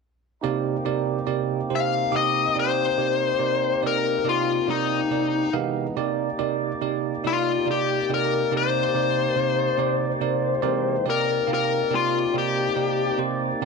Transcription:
0.41 tonewheel organ C3 A#3 C4 D#4 G4, tine electric piano C3 D#4 G4 A#4 D5
0.85 tine electric piano C3 D#4 G4 A#4 D5
1.27 tine electric piano C3 D#4 G4 A#4 D5
1.70 tine electric piano C3 D#4 G4 A#4 C5
1.76 lead electric guitar F5
2.12 tine electric piano C3 D#4 G4 A#4 D6
2.16 lead electric guitar D#5
2.55 tine electric piano C3 D#4 G4 A#4 D5
2.59 lead electric guitar C5
2.97 tine electric piano C3 D#4 G4 A#4 D5
3.39 tine electric piano C3 D#4 G4 A#4 D5
3.82 tine electric piano C3 D#4 G4 A#4 D5
3.87 lead electric guitar A#4
4.24 tine electric piano C3 D#4 G4 A#4 D5
4.29 lead electric guitar F4
4.67 tine electric piano C3 D#4 G4 A#4 D5, lead electric guitar D#4
5.10 tine electric piano C3 D#4 G4 A#4 D5
5.53 tine electric piano C3 D#4 G4 A#4 F5, tonewheel organ E3 G#3 B3 D#4
5.96 tine electric piano C3 D#4 G4 A#4 D5, tonewheel organ C3 A#3 D#4 G4 D5
6.39 tine electric piano C3 D#4 G4 A#4 D5
6.81 tine electric piano C3 D#4 G4 A#4 D5
7.24 tine electric piano C3 D#4 G4 A#4 D5, lead electric guitar F4
7.65 tine electric piano C3 D#4 G4 A#4 D5
7.71 lead electric guitar G4
8.09 tine electric piano C3 D#4 G4 A#4 D5
8.14 lead electric guitar A#4
8.51 tine electric piano C3 D#4 G4 A#4 D5
8.57 lead electric guitar C5
8.94 tine electric piano C3 D#4 G4 A#4 D5
9.36 tine electric piano C3 D#4 G4 A#4 D5
9.78 tine electric piano C3 D#4 G4 A#4 D5
10.21 tine electric piano C3 D#4 G4 A#4 D5
10.62 tine electric piano C3 D#4 G4 A#4 D5, tonewheel organ E3 G#3 A#3 C4 D#4
11.05 tine electric piano C3 D#4 G4 A#4 D5, tonewheel organ A#3 C4 G4 D5
11.09 tonewheel organ D#4, lead electric guitar A#4
11.47 tine electric piano C3 D#4 G4 A#4 F5
11.54 lead electric guitar A#4
11.90 tine electric piano C3 D#4 G4 A#4 D5
11.95 lead electric guitar F4
12.34 tine electric piano C3 D#4 G4 A#4 D5
12.38 lead electric guitar G4
12.76 tine electric piano C3 D#4 G4 A#4 D5
13.18 tine electric piano C3 D#4 G4 A#4 C5
13.62 tine electric piano C3 G4

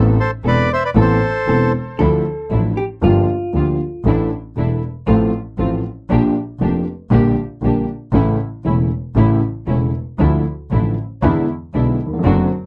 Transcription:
Already playing: grand piano A1 A2 E3 B3 C4 A4, double bass A1, string section B3 C4 A4
0.20 bandoneon A4 C5
0.44 double bass E1, grand piano E1 E2 E3 B3 C4 A4, string section B3 C4 A4
0.48 bandoneon B4 D5
0.73 bandoneon C5 E5
0.85 bandoneon B4 D5
0.95 double bass A1, grand piano A1 A2 E3 B3 C4 A4, string section B3 C4 A4
1.01 bandoneon A4 C5
1.47 double bass E1, grand piano E1 E2 E3 B3 C4 A4, string section B3 C4 A4
1.98 grand piano D2 D3 F3 D4 E4 A4, double bass D2, string section F3 D4 E4, hollow-body jazz guitar A4
2.50 double bass A1, grand piano A1 A2 F3 D4 E4 A4, string section F3 D4 E4
2.77 hollow-body jazz guitar G4
3.01 grand piano G1 G2 F3 A#3 D4 G4, double bass G1, string section G3 A#3 F4, hollow-body jazz guitar F4
3.53 grand piano D2 D3 F3 A#3 D4 G4, double bass D2, string section G3 A#3 F4
4.05 double bass A1, grand piano A1 A2 E3 A3 D4 A4, string section A3 D4 E4
4.56 double bass E1, grand piano E1 E2 E3 A3 D4 A4, string section A3 D4 E4
5.07 double bass A1, grand piano A1 A2 F3 A3 C4 A4, string section A3 C4 F4
5.58 double bass A1, grand piano A1 A2 F3 A3 C4 A4, string section A3 C4 F4
6.10 double bass A#1, grand piano A#1 A#2 F3 A#3 D4 G4, string section A#3 D4 G4
6.60 double bass F1, grand piano F1 F2 F3 A#3 D4 G4, string section A#3 D4 G4
7.10 double bass A#1, grand piano A#1 A#2 D3 G3 A#3 G4, string section A#3 D4 G4
7.61 double bass A#1, grand piano A#1 A#2 D3 G3 A#3 G4, string section A#3 D4 G4
8.12 double bass A1, grand piano A1 A2 C#3 E3 A3 E4, string section A3 C#4 E4
8.64 double bass E1, grand piano E1 E2 C#3 E3 A3 E4, string section A3 C#4 E4
9.15 double bass A1, grand piano A1 A2 C#3 E3 A3 E4, string section A3 C#4 E4
9.67 double bass E1, grand piano E1 E2 C#3 E3 A3 E4, string section A3 C#4 E4
10.19 double bass D2, grand piano D2 D3 F3 A3 E4, string section F3 D4 E4
10.71 double bass A1, grand piano A1 A2 D3 F3 A3 E4, string section F3 D4 E4
11.22 double bass E2, grand piano E2 D3 E3 G#3 B3 E4, string section G#3 D4 E4
11.73 double bass B1, grand piano B1 B2 D3 G#3 B3 E4, string section G#3 D4 E4
12.06 grand piano D#2
12.13 grand piano E2
12.19 grand piano F2
12.24 double bass F#1, grand piano F#2 D3 F#3 A3 C4 F#4, string section C4 D4 F#4

